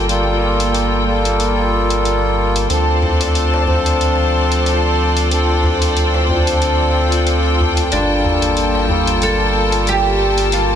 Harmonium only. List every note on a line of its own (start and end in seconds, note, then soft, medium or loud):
0.07 1.03 G3 medium
0.07 1.03 A#3 medium
0.07 1.04 F4 medium
0.11 1.05 A4 loud
1.05 2.65 G3 loud
1.05 2.66 A#3 medium
1.05 2.67 F4 medium
1.05 2.67 A4 loud
2.68 3.63 F3 medium
2.68 3.64 C4 medium
2.68 3.64 D4 medium
2.72 3.65 A4 medium
3.65 5.26 F3 loud
3.65 5.27 C4 medium
3.65 5.27 D4 medium
3.69 5.28 A4 loud
5.29 6.24 F3 medium
5.29 6.25 C4 medium
5.29 6.25 D4 medium
5.33 6.26 A4 medium
6.26 7.87 F3 loud
6.26 7.88 C4 medium
6.26 7.88 D4 medium
6.30 7.89 A4 loud
7.90 8.85 G3 medium
7.90 8.86 A#3 medium
7.90 8.86 F4 medium
7.90 8.87 A4 loud
8.87 10.48 G3 loud
8.87 10.49 A#3 medium
8.87 10.49 F4 medium
8.87 10.50 A4 loud
10.51 10.75 G3 medium
10.51 10.75 A#3 medium
10.51 10.75 F4 medium
10.51 10.75 A4 loud